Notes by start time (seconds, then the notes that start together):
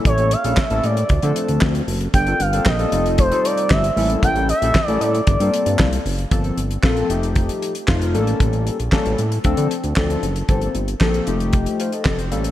Already playing: G3 A#3 C#4 E4 A4
0.05 A1 C#5, kick, closed hi-hat
0.18 G3 A#3 C#4 E4 A4, closed hi-hat
0.31 F5, closed hi-hat
0.44 A#1 G3 A#3 C#4 E4 A4, closed hi-hat
0.57 E5, kick, snare, clap
0.70 A1 G3 A#3 C#4 E4 A4, closed hi-hat
0.84 A2 D5, closed hi-hat
0.97 closed hi-hat
1.09 D2, kick, closed hi-hat
1.22 D3 F3 A3 C4 D4 A4, closed hi-hat
1.36 closed hi-hat
1.48 D2, closed hi-hat
1.61 D2, kick, snare, clap
1.75 closed hi-hat
1.88 F#1, open hi-hat
2.01 closed hi-hat
2.14 G1 G5, kick, closed hi-hat
2.26 G3 A#3 C4 F4 A4, closed hi-hat
2.40 G1 F5, closed hi-hat
2.53 G3 A#3 C4 F4 A4, closed hi-hat
2.65 A#1 D#5, kick, snare, clap
2.79 G3 A#3 C4 F4 A4, closed hi-hat
2.92 F1 G3 C4 D#4 F4 A4, closed hi-hat
3.06 closed hi-hat
3.18 C5, kick, closed hi-hat
3.31 G3 C4 D#4 F4 A4, closed hi-hat
3.45 D5, closed hi-hat
3.57 closed hi-hat
3.70 G1 E5, kick, snare, clap
3.84 closed hi-hat
3.96 A1 G3 A#3 C#4 E4 A4, open hi-hat
4.10 closed hi-hat
4.23 A1 G5, kick, closed hi-hat
4.36 G3 A#3 C#4 E4 A4, closed hi-hat
4.49 E5, closed hi-hat
4.62 A#1 G3 A#3 C#4 E4 A4, closed hi-hat
4.75 kick, snare, clap
4.88 A1 G3 A#3 C#4 E4 A4 D5, closed hi-hat
5.01 A2 D5, closed hi-hat
5.15 closed hi-hat
5.27 G1, kick, closed hi-hat
5.40 G2 G3 A#3 C4 F4 A4, closed hi-hat
5.54 closed hi-hat
5.66 G2, closed hi-hat
5.79 C2, kick, snare, clap
5.93 closed hi-hat
6.06 F#1, open hi-hat
6.18 closed hi-hat
6.31 G1 F3 A#3 C4 A4, kick, closed hi-hat
6.44 closed hi-hat
6.58 G1, closed hi-hat
6.71 closed hi-hat
6.83 A#1 F3 A#3 C4 A4, kick, snare, clap
6.97 closed hi-hat
7.09 F1 F3 A3 D#4 G4, closed hi-hat
7.23 closed hi-hat
7.36 kick, closed hi-hat
7.49 closed hi-hat
7.62 closed hi-hat
7.75 closed hi-hat
7.88 F1 F3 A3 D#4 F4, kick, snare, clap
8.02 closed hi-hat
8.14 A1 G3 A#3 C#4 A4, closed hi-hat
8.27 closed hi-hat
8.40 A1, kick, closed hi-hat
8.53 closed hi-hat
8.67 closed hi-hat
8.80 A#1, closed hi-hat
8.92 G3 A#3 C#4 A4, kick, snare, clap
9.06 A1, closed hi-hat
9.18 A2, closed hi-hat
9.32 closed hi-hat
9.44 D2 F3 C4 D4 A4, kick, closed hi-hat
9.57 D3, closed hi-hat
9.71 closed hi-hat
9.84 D2, closed hi-hat
9.96 D2 F3 C4 D4 A4, kick, snare, clap
10.10 closed hi-hat
10.23 F#1, closed hi-hat
10.36 closed hi-hat
10.49 G1 F3 A#3 C4 A4, kick, closed hi-hat
10.61 closed hi-hat
10.75 G1, closed hi-hat
10.88 closed hi-hat
11.01 A#1 F3 A#3 C4 A4, kick, snare, clap
11.14 closed hi-hat
11.27 F1 F3 A3 D#4 G4, closed hi-hat
11.40 closed hi-hat
11.53 kick, closed hi-hat
11.66 closed hi-hat
11.80 C5 F5, closed hi-hat
11.92 A4 D#5, closed hi-hat
12.05 F1 A4 D5, kick, snare, clap
12.19 G4 C5, closed hi-hat
12.31 A1 G3 A#3 C#4 A4, closed hi-hat
12.44 closed hi-hat